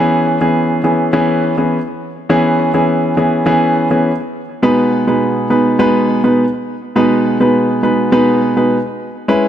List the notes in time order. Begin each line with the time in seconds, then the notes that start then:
Already playing: E3 B3 C#4 G#4
0.41 E3 B3 C#4 G#4
0.84 E3 B3 C#4 G#4
1.13 E3 B3 C#4 G#4
1.57 E3 B3 C#4 G#4
2.29 E3 B3 C#4 G#4
2.74 E3 B3 C#4 G#4
3.17 E3 B3 C#4 G#4
3.46 E3 B3 C#4 G#4
3.91 E3 B3 C#4 G#4
4.62 B2 G#3 B3 D#4 B4
5.07 B2 G#3 B3 D#4 B4
5.50 B2 G#3 B3 D#4 B4
5.79 B2 G#3 B3 D#4 B4
6.24 B2 G#3 B3 D#4 B4
6.96 B2 G#3 B3 D#4 B4
7.40 B2 G#3 B3 D#4 B4
7.83 B2 G#3 B3 D#4 B4
8.12 B2 G#3 B3 D#4 B4
8.56 B2 G#3 B3 D#4 B4
9.28 G#3 C#4 E4 B4